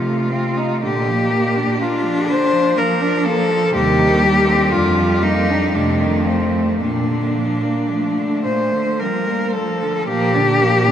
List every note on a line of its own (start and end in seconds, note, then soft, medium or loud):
0.00 0.66 C3 medium
0.00 0.33 A3 medium
0.00 0.82 F4 medium
0.07 0.33 A3 soft
0.31 0.85 A3 soft
0.31 0.58 C4 soft
0.57 0.81 D#4 soft
0.82 1.65 A#2 medium
0.82 1.07 D3 medium
0.82 1.83 A#3 medium
0.82 1.83 G4 medium
1.06 1.32 F3 soft
1.30 1.57 A#3 soft
1.56 1.82 D4 soft
1.80 2.06 A#3 soft
1.80 2.79 D4 medium
1.80 2.31 F4 medium
2.05 2.29 F3 medium
2.27 2.54 D3 medium
2.27 2.79 C5 medium
2.52 2.77 F3 medium
2.76 3.74 F3 medium
2.76 3.01 A#3 medium
2.76 3.27 A#4 medium
3.00 3.26 D4 medium
3.25 3.51 A#3 medium
3.25 3.74 A4 medium
3.49 3.72 F3 medium
3.73 4.56 D#2 medium
3.73 4.00 C3 medium
3.73 5.77 G3 medium
3.73 4.74 G4 loud
3.98 4.24 D#3 medium
4.23 4.49 G3 medium
4.47 4.71 C4 medium
4.71 5.57 F2 medium
4.71 4.99 D3 medium
4.71 5.25 F4 medium
4.97 5.23 F3 medium
5.22 5.50 A#3 medium
5.22 5.76 D#4 medium
5.49 5.74 D4 medium
5.74 6.63 F2 medium
5.74 6.01 C3 medium
5.74 6.83 A3 medium
5.74 6.28 D4 medium
6.00 6.28 D#3 soft
6.26 6.55 F3 soft
6.26 6.80 C4 medium
6.53 6.79 A3 soft
6.80 7.08 A#2 soft
6.80 7.72 A#2 medium
6.80 7.79 A#3 medium
6.80 8.42 D4 medium
7.07 7.35 D3 soft
7.33 7.64 F3 soft
7.62 7.91 A#3 soft
7.90 8.18 F3 soft
7.90 9.03 A3 medium
8.17 8.47 D3 soft
8.44 8.74 A#2 soft
8.44 9.01 C5 medium
8.73 9.02 D3 soft
9.00 9.29 F3 soft
9.00 9.58 G3 soft
9.00 9.56 A#4 medium
9.28 9.56 A#3 soft
9.54 9.83 F3 soft
9.54 10.09 F3 soft
9.54 10.07 A4 medium
9.81 10.07 D3 soft
10.08 10.92 A#2 medium
10.08 10.37 F3 medium
10.08 10.35 A#3 medium
10.08 10.92 G4 loud
10.34 10.63 D3 medium
10.34 10.62 D4 medium
10.61 10.89 F3 medium
10.61 10.88 A#3 medium
10.86 10.92 D3 medium
10.86 10.92 D4 medium